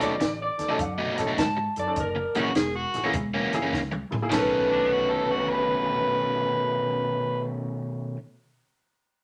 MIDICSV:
0, 0, Header, 1, 8, 480
1, 0, Start_track
1, 0, Tempo, 587659
1, 1610, Time_signature, 4, 2, 24, 8
1, 7545, End_track
2, 0, Start_track
2, 0, Title_t, "Clean electric guitar"
2, 0, Program_c, 0, 27
2, 16, Note_on_c, 0, 74, 83
2, 324, Note_off_c, 0, 74, 0
2, 346, Note_on_c, 0, 74, 91
2, 670, Note_off_c, 0, 74, 0
2, 670, Note_on_c, 0, 78, 79
2, 1126, Note_off_c, 0, 78, 0
2, 1132, Note_on_c, 0, 81, 95
2, 1441, Note_off_c, 0, 81, 0
2, 1466, Note_on_c, 0, 74, 82
2, 1613, Note_off_c, 0, 74, 0
2, 1635, Note_on_c, 0, 70, 86
2, 1926, Note_off_c, 0, 70, 0
2, 3544, Note_on_c, 0, 71, 94
2, 6649, Note_off_c, 0, 71, 0
2, 7545, End_track
3, 0, Start_track
3, 0, Title_t, "Harmonica"
3, 0, Program_c, 1, 22
3, 1931, Note_on_c, 1, 61, 61
3, 1931, Note_on_c, 1, 63, 61
3, 1931, Note_on_c, 1, 66, 88
3, 1983, Note_off_c, 1, 61, 0
3, 1985, Note_off_c, 1, 63, 0
3, 2080, Note_off_c, 1, 66, 0
3, 2085, Note_on_c, 1, 68, 82
3, 2242, Note_off_c, 1, 68, 0
3, 2248, Note_on_c, 1, 66, 91
3, 2505, Note_off_c, 1, 66, 0
3, 3848, Note_on_c, 1, 62, 89
3, 4020, Note_on_c, 1, 66, 89
3, 4032, Note_off_c, 1, 62, 0
3, 4165, Note_on_c, 1, 69, 81
3, 4177, Note_off_c, 1, 66, 0
3, 4337, Note_on_c, 1, 66, 78
3, 4350, Note_off_c, 1, 69, 0
3, 4485, Note_on_c, 1, 71, 91
3, 4497, Note_off_c, 1, 66, 0
3, 6068, Note_off_c, 1, 71, 0
3, 7545, End_track
4, 0, Start_track
4, 0, Title_t, "Upright piano"
4, 0, Program_c, 2, 0
4, 0, Note_on_c, 2, 69, 72
4, 83, Note_off_c, 2, 69, 0
4, 471, Note_on_c, 2, 63, 39
4, 477, Note_on_c, 2, 69, 45
4, 519, Note_off_c, 2, 63, 0
4, 522, Note_off_c, 2, 69, 0
4, 565, Note_on_c, 2, 61, 67
4, 569, Note_on_c, 2, 63, 62
4, 573, Note_on_c, 2, 69, 78
4, 649, Note_off_c, 2, 61, 0
4, 651, Note_off_c, 2, 63, 0
4, 654, Note_off_c, 2, 69, 0
4, 957, Note_on_c, 2, 61, 69
4, 959, Note_on_c, 2, 63, 66
4, 965, Note_on_c, 2, 69, 75
4, 1043, Note_off_c, 2, 61, 0
4, 1044, Note_off_c, 2, 63, 0
4, 1048, Note_off_c, 2, 69, 0
4, 1441, Note_on_c, 2, 63, 43
4, 1446, Note_on_c, 2, 69, 47
4, 1484, Note_off_c, 2, 63, 0
4, 1486, Note_off_c, 2, 69, 0
4, 1525, Note_on_c, 2, 61, 64
4, 1526, Note_on_c, 2, 63, 62
4, 1531, Note_on_c, 2, 69, 72
4, 1609, Note_off_c, 2, 61, 0
4, 1609, Note_off_c, 2, 63, 0
4, 1612, Note_off_c, 2, 69, 0
4, 1922, Note_on_c, 2, 58, 62
4, 1926, Note_on_c, 2, 64, 55
4, 1926, Note_on_c, 2, 68, 69
4, 2006, Note_off_c, 2, 58, 0
4, 2008, Note_off_c, 2, 64, 0
4, 2008, Note_off_c, 2, 68, 0
4, 2402, Note_on_c, 2, 64, 46
4, 2415, Note_on_c, 2, 68, 51
4, 2444, Note_off_c, 2, 64, 0
4, 2450, Note_off_c, 2, 68, 0
4, 2487, Note_on_c, 2, 58, 78
4, 2494, Note_on_c, 2, 64, 70
4, 2499, Note_on_c, 2, 68, 85
4, 2570, Note_off_c, 2, 58, 0
4, 2573, Note_off_c, 2, 64, 0
4, 2576, Note_off_c, 2, 68, 0
4, 2887, Note_on_c, 2, 58, 82
4, 2892, Note_on_c, 2, 64, 79
4, 2894, Note_on_c, 2, 68, 93
4, 2968, Note_off_c, 2, 58, 0
4, 2970, Note_off_c, 2, 64, 0
4, 2972, Note_off_c, 2, 68, 0
4, 3355, Note_on_c, 2, 64, 50
4, 3362, Note_on_c, 2, 68, 54
4, 3400, Note_off_c, 2, 64, 0
4, 3404, Note_off_c, 2, 68, 0
4, 3450, Note_on_c, 2, 58, 80
4, 3450, Note_on_c, 2, 64, 72
4, 3453, Note_on_c, 2, 68, 87
4, 3508, Note_on_c, 2, 61, 82
4, 3523, Note_on_c, 2, 63, 71
4, 3531, Note_off_c, 2, 58, 0
4, 3531, Note_off_c, 2, 64, 0
4, 3532, Note_off_c, 2, 68, 0
4, 3541, Note_on_c, 2, 69, 83
4, 6631, Note_off_c, 2, 61, 0
4, 6638, Note_off_c, 2, 63, 0
4, 6648, Note_off_c, 2, 69, 0
4, 7545, End_track
5, 0, Start_track
5, 0, Title_t, "Overdriven electric guitar"
5, 0, Program_c, 3, 29
5, 0, Note_on_c, 3, 47, 76
5, 0, Note_on_c, 3, 54, 88
5, 2, Note_on_c, 3, 57, 86
5, 4, Note_on_c, 3, 63, 92
5, 107, Note_off_c, 3, 47, 0
5, 110, Note_off_c, 3, 54, 0
5, 111, Note_off_c, 3, 57, 0
5, 112, Note_off_c, 3, 63, 0
5, 562, Note_on_c, 3, 63, 80
5, 565, Note_on_c, 3, 57, 79
5, 570, Note_on_c, 3, 47, 60
5, 571, Note_on_c, 3, 54, 71
5, 633, Note_off_c, 3, 47, 0
5, 634, Note_off_c, 3, 54, 0
5, 636, Note_off_c, 3, 63, 0
5, 637, Note_off_c, 3, 57, 0
5, 801, Note_on_c, 3, 63, 88
5, 803, Note_on_c, 3, 57, 80
5, 806, Note_on_c, 3, 54, 83
5, 807, Note_on_c, 3, 47, 67
5, 986, Note_off_c, 3, 63, 0
5, 987, Note_off_c, 3, 57, 0
5, 988, Note_off_c, 3, 54, 0
5, 989, Note_off_c, 3, 47, 0
5, 1039, Note_on_c, 3, 63, 80
5, 1047, Note_on_c, 3, 47, 61
5, 1047, Note_on_c, 3, 57, 77
5, 1048, Note_on_c, 3, 54, 65
5, 1173, Note_off_c, 3, 63, 0
5, 1177, Note_off_c, 3, 47, 0
5, 1177, Note_off_c, 3, 57, 0
5, 1178, Note_off_c, 3, 54, 0
5, 1924, Note_on_c, 3, 42, 83
5, 1925, Note_on_c, 3, 52, 75
5, 1927, Note_on_c, 3, 58, 84
5, 1935, Note_on_c, 3, 61, 91
5, 2032, Note_off_c, 3, 42, 0
5, 2032, Note_off_c, 3, 52, 0
5, 2033, Note_off_c, 3, 58, 0
5, 2037, Note_off_c, 3, 61, 0
5, 2483, Note_on_c, 3, 61, 77
5, 2486, Note_on_c, 3, 58, 75
5, 2491, Note_on_c, 3, 52, 68
5, 2493, Note_on_c, 3, 42, 62
5, 2557, Note_off_c, 3, 42, 0
5, 2559, Note_off_c, 3, 52, 0
5, 2563, Note_off_c, 3, 58, 0
5, 2566, Note_off_c, 3, 61, 0
5, 2727, Note_on_c, 3, 61, 82
5, 2728, Note_on_c, 3, 58, 80
5, 2732, Note_on_c, 3, 52, 81
5, 2735, Note_on_c, 3, 42, 71
5, 2908, Note_off_c, 3, 58, 0
5, 2908, Note_off_c, 3, 61, 0
5, 2911, Note_off_c, 3, 52, 0
5, 2912, Note_off_c, 3, 42, 0
5, 2959, Note_on_c, 3, 61, 80
5, 2968, Note_on_c, 3, 58, 68
5, 2969, Note_on_c, 3, 52, 69
5, 2970, Note_on_c, 3, 42, 58
5, 3093, Note_off_c, 3, 61, 0
5, 3097, Note_off_c, 3, 52, 0
5, 3097, Note_off_c, 3, 58, 0
5, 3098, Note_off_c, 3, 42, 0
5, 3509, Note_on_c, 3, 47, 92
5, 3521, Note_on_c, 3, 51, 94
5, 3535, Note_on_c, 3, 57, 84
5, 3544, Note_on_c, 3, 61, 99
5, 6664, Note_off_c, 3, 47, 0
5, 6670, Note_off_c, 3, 51, 0
5, 6677, Note_off_c, 3, 57, 0
5, 6682, Note_off_c, 3, 61, 0
5, 7545, End_track
6, 0, Start_track
6, 0, Title_t, "Upright bass"
6, 0, Program_c, 4, 32
6, 13, Note_on_c, 4, 39, 89
6, 129, Note_off_c, 4, 39, 0
6, 169, Note_on_c, 4, 33, 94
6, 394, Note_off_c, 4, 33, 0
6, 481, Note_on_c, 4, 39, 80
6, 601, Note_off_c, 4, 39, 0
6, 650, Note_on_c, 4, 42, 93
6, 874, Note_off_c, 4, 42, 0
6, 971, Note_on_c, 4, 45, 83
6, 1088, Note_off_c, 4, 45, 0
6, 1122, Note_on_c, 4, 44, 85
6, 1350, Note_off_c, 4, 44, 0
6, 1448, Note_on_c, 4, 42, 83
6, 1565, Note_off_c, 4, 42, 0
6, 1603, Note_on_c, 4, 30, 94
6, 1830, Note_off_c, 4, 30, 0
6, 1931, Note_on_c, 4, 34, 89
6, 2047, Note_off_c, 4, 34, 0
6, 2094, Note_on_c, 4, 28, 92
6, 2317, Note_off_c, 4, 28, 0
6, 2405, Note_on_c, 4, 34, 86
6, 2524, Note_off_c, 4, 34, 0
6, 2563, Note_on_c, 4, 28, 89
6, 2790, Note_off_c, 4, 28, 0
6, 2889, Note_on_c, 4, 30, 82
6, 3006, Note_off_c, 4, 30, 0
6, 3046, Note_on_c, 4, 37, 83
6, 3272, Note_off_c, 4, 37, 0
6, 3369, Note_on_c, 4, 34, 81
6, 3486, Note_off_c, 4, 34, 0
6, 3530, Note_on_c, 4, 35, 93
6, 6642, Note_off_c, 4, 35, 0
6, 7545, End_track
7, 0, Start_track
7, 0, Title_t, "Muted overdriven electric guitar strokes"
7, 165, Note_on_c, 9, 29, 45
7, 247, Note_off_c, 9, 29, 0
7, 643, Note_on_c, 9, 29, 46
7, 725, Note_off_c, 9, 29, 0
7, 1281, Note_on_c, 9, 29, 49
7, 1362, Note_off_c, 9, 29, 0
7, 1759, Note_on_c, 9, 29, 46
7, 1840, Note_off_c, 9, 29, 0
7, 2089, Note_on_c, 9, 29, 46
7, 2171, Note_off_c, 9, 29, 0
7, 2566, Note_on_c, 9, 29, 47
7, 2648, Note_off_c, 9, 29, 0
7, 3199, Note_on_c, 9, 29, 47
7, 3280, Note_off_c, 9, 29, 0
7, 7545, End_track
8, 0, Start_track
8, 0, Title_t, "Drums"
8, 7, Note_on_c, 9, 42, 65
8, 13, Note_on_c, 9, 38, 33
8, 88, Note_off_c, 9, 42, 0
8, 95, Note_off_c, 9, 38, 0
8, 166, Note_on_c, 9, 42, 77
8, 172, Note_on_c, 9, 38, 98
8, 247, Note_off_c, 9, 42, 0
8, 254, Note_off_c, 9, 38, 0
8, 479, Note_on_c, 9, 42, 59
8, 486, Note_on_c, 9, 38, 29
8, 561, Note_off_c, 9, 42, 0
8, 568, Note_off_c, 9, 38, 0
8, 645, Note_on_c, 9, 42, 88
8, 646, Note_on_c, 9, 36, 109
8, 727, Note_off_c, 9, 42, 0
8, 728, Note_off_c, 9, 36, 0
8, 960, Note_on_c, 9, 42, 59
8, 966, Note_on_c, 9, 38, 30
8, 1041, Note_off_c, 9, 42, 0
8, 1048, Note_off_c, 9, 38, 0
8, 1125, Note_on_c, 9, 36, 73
8, 1127, Note_on_c, 9, 42, 83
8, 1133, Note_on_c, 9, 38, 99
8, 1207, Note_off_c, 9, 36, 0
8, 1208, Note_off_c, 9, 42, 0
8, 1215, Note_off_c, 9, 38, 0
8, 1437, Note_on_c, 9, 42, 62
8, 1519, Note_off_c, 9, 42, 0
8, 1600, Note_on_c, 9, 42, 79
8, 1604, Note_on_c, 9, 36, 102
8, 1682, Note_off_c, 9, 42, 0
8, 1685, Note_off_c, 9, 36, 0
8, 1915, Note_on_c, 9, 42, 58
8, 1997, Note_off_c, 9, 42, 0
8, 2082, Note_on_c, 9, 42, 77
8, 2089, Note_on_c, 9, 38, 107
8, 2164, Note_off_c, 9, 42, 0
8, 2171, Note_off_c, 9, 38, 0
8, 2398, Note_on_c, 9, 42, 55
8, 2405, Note_on_c, 9, 38, 29
8, 2480, Note_off_c, 9, 42, 0
8, 2486, Note_off_c, 9, 38, 0
8, 2558, Note_on_c, 9, 42, 83
8, 2564, Note_on_c, 9, 36, 113
8, 2639, Note_off_c, 9, 42, 0
8, 2645, Note_off_c, 9, 36, 0
8, 2880, Note_on_c, 9, 42, 58
8, 2887, Note_on_c, 9, 38, 29
8, 2962, Note_off_c, 9, 42, 0
8, 2968, Note_off_c, 9, 38, 0
8, 3045, Note_on_c, 9, 36, 79
8, 3050, Note_on_c, 9, 38, 54
8, 3127, Note_off_c, 9, 36, 0
8, 3132, Note_off_c, 9, 38, 0
8, 3202, Note_on_c, 9, 47, 66
8, 3284, Note_off_c, 9, 47, 0
8, 3366, Note_on_c, 9, 43, 99
8, 3447, Note_off_c, 9, 43, 0
8, 3524, Note_on_c, 9, 43, 93
8, 3524, Note_on_c, 9, 53, 81
8, 3530, Note_on_c, 9, 38, 101
8, 3605, Note_off_c, 9, 43, 0
8, 3605, Note_off_c, 9, 53, 0
8, 3612, Note_off_c, 9, 38, 0
8, 7545, End_track
0, 0, End_of_file